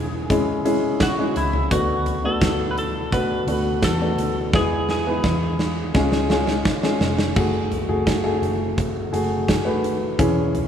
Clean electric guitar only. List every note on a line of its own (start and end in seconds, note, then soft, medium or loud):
0.00 1.02 G#4 loud
1.02 1.37 F#4 loud
1.37 1.72 E4 medium
1.72 2.25 F#4 loud
2.25 2.70 A4 loud
2.71 2.78 B4 medium
2.79 3.13 A4 medium
3.14 3.84 B4 loud
3.84 4.55 A4 loud
4.56 4.90 G#4 loud
4.91 6.98 G#4 loud